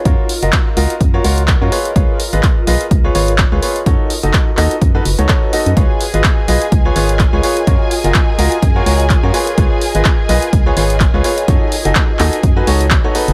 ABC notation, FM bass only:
X:1
M:4/4
L:1/16
Q:"Swing 16ths" 1/4=126
K:Dbmix
V:1 name="FM bass" clef=bass
G,, z2 G,,, z2 D,, z G,,2 D,,3 G,, z2 | D,, z2 A,,, z2 C,, z D,,2 A,,,3 D,, z2 | G,, z2 G,,, z2 E,, z G,,2 G,,, D,, z3 G,, | D,, z2 A,,, z2 C,, z D,,2 A,,,3 D,, z2 |
G,, z2 G,,, z2 D,, z G,,2 D,,3 G,, z2 | D,, z2 A,,, z2 C,, z D,,2 A,,,3 D,, z2 | G,, z2 G,,, z2 E,, z G,,2 D,,3 z2 G,,, |]